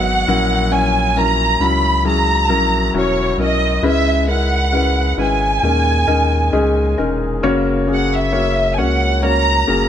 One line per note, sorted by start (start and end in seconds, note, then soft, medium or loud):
0.00 0.24 G#1 medium
0.00 0.30 D#3 medium
0.00 0.28 F#3 medium
0.00 0.30 B3 medium
0.00 0.30 D#4 medium
0.00 0.26 F#4 medium
0.00 0.29 G#4 medium
0.00 0.28 A#4 medium
0.00 0.30 C#5 medium
0.00 0.73 F#5 medium
0.27 1.56 A#1 medium
0.27 1.56 A#2 medium
0.27 0.69 F#3 medium
0.27 0.70 C#4 medium
0.27 0.70 E4 medium
0.27 0.70 A#4 medium
0.71 1.13 F#3 medium
0.71 1.13 C#4 medium
0.71 1.13 E4 medium
0.71 1.14 C#5 medium
0.71 1.17 G#5 medium
1.16 1.58 F#3 medium
1.16 1.58 C#4 medium
1.16 1.58 E4 medium
1.16 1.59 A#4 medium
1.16 1.62 A#5 medium
1.59 2.50 C#2 medium
1.59 2.03 F#3 medium
1.59 2.03 C#4 soft
1.59 2.03 E4 medium
1.59 2.03 F#4 medium
1.59 2.06 B5 medium
2.04 2.47 F#3 medium
2.04 2.47 C#4 medium
2.04 2.47 E4 medium
2.04 2.47 G#4 medium
2.04 2.91 A#5 medium
2.48 2.90 A#1 medium
2.48 2.91 F#3 medium
2.48 2.91 C#4 medium
2.48 2.91 E4 medium
2.48 2.91 A#4 medium
2.93 3.35 E1 medium
2.93 3.36 F#3 medium
2.93 3.36 C#4 medium
2.93 3.36 E4 medium
2.93 3.36 F#4 medium
2.98 3.40 C#5 medium
3.37 3.79 B1 medium
3.37 3.81 F#3 medium
3.37 3.81 C#4 medium
3.37 3.81 E4 medium
3.37 3.81 A#4 medium
3.42 3.82 D#5 medium
3.82 5.13 C#2 medium
3.82 5.13 C#3 medium
3.82 4.25 G#3 medium
3.82 4.25 C#4 medium
3.82 4.25 E4 medium
3.82 4.26 B4 medium
3.87 4.30 E5 medium
4.28 4.70 G#3 medium
4.28 4.70 C#4 medium
4.28 4.70 E4 medium
4.28 4.70 A#4 medium
4.28 5.15 F#5 medium
4.72 5.15 G#3 medium
4.72 5.15 C#4 medium
4.72 5.15 E4 medium
4.72 5.15 B4 medium
5.17 5.59 G#1 medium
5.17 5.60 G#3 medium
5.17 5.60 C#4 medium
5.17 5.60 E4 soft
5.17 5.60 B4 medium
5.22 6.97 G#5 medium
5.62 6.04 D#2 medium
5.62 6.95 A#2 soft
5.62 6.06 G#3 medium
5.62 6.06 C#4 medium
5.62 6.06 D#4 medium
5.62 6.06 A#4 medium
6.07 6.50 D#2 medium
6.07 6.51 G#3 medium
6.07 6.51 C#4 medium
6.07 6.51 D#4 medium
6.07 6.51 A#4 medium
6.52 6.95 C#2 medium
6.52 6.96 G#3 medium
6.52 6.96 C#4 medium
6.52 6.96 D#4 medium
6.52 6.97 G#4 medium
6.97 7.40 E1 medium
6.97 7.41 G#3 medium
6.97 7.41 C#4 medium
6.97 7.41 D#4 medium
6.97 7.41 A#4 medium
7.42 8.79 F#1 loud
7.42 8.74 C#3 medium
7.42 7.86 A#3 loud
7.42 7.86 C#4 medium
7.42 7.86 F#4 medium
7.42 7.86 C#5 loud
7.87 8.31 A#3 medium
7.87 8.31 C#4 medium
7.87 8.31 F#4 medium
7.87 8.31 G#4 medium
7.93 8.12 F#5 medium
8.15 8.74 E5 medium
8.32 8.76 A#3 medium
8.32 8.76 C#4 medium
8.32 8.76 F#4 medium
8.32 8.76 C#5 medium
8.73 8.79 G#5 soft
8.77 9.64 C#2 medium
8.77 9.21 A#3 medium
8.77 9.21 C#4 medium
8.77 9.21 F#4 medium
8.77 9.21 C#5 medium
8.77 9.25 F#5 medium
9.22 9.66 A#3 medium
9.22 9.65 C#4 medium
9.22 9.66 F#4 medium
9.22 9.66 C#5 medium
9.22 9.89 A#5 medium
9.67 9.89 F#1 loud
9.67 9.89 A#3 medium
9.67 9.89 C#4 medium
9.67 9.89 F#4 medium
9.67 9.89 G#4 medium